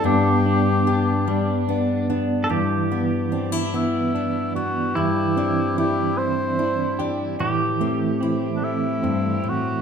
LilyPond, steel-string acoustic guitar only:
\new Staff \with { instrumentName = "Steel-string acoustic guitar" } { \time 6/8 \key g \major \tempo 4. = 49 << { r4 b4 d'8 b8 | r8 b8 d'16 e'16 b8 b8 b8 | r8 d'8 e'4 e'8 d'8 | r8 c'8 e'2 | } \\ { g,4. g4. | g,2. | g,2. | a,2 g,8 a,8 | } >> }